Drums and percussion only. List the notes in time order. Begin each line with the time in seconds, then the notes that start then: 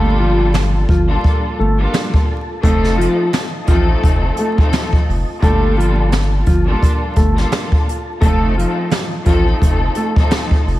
0.54 snare
0.89 kick
1.24 kick
1.94 snare
2.14 kick
2.63 kick, closed hi-hat
2.84 snare
3.01 closed hi-hat
3.33 snare, closed hi-hat
3.67 kick, closed hi-hat
4.04 kick, closed hi-hat
4.37 closed hi-hat
4.58 kick
4.73 snare, closed hi-hat
4.93 kick
5.10 open hi-hat
5.43 kick, closed hi-hat
5.80 closed hi-hat
6.12 snare, closed hi-hat
6.46 kick, closed hi-hat
6.83 kick, closed hi-hat
7.16 kick, closed hi-hat
7.38 snare
7.52 snare, closed hi-hat
7.72 kick
7.89 closed hi-hat
8.22 kick, closed hi-hat
8.59 closed hi-hat
8.91 snare, closed hi-hat
9.26 kick, closed hi-hat
9.62 kick, closed hi-hat
9.95 closed hi-hat
10.16 kick
10.31 snare, closed hi-hat
10.51 kick
10.68 open hi-hat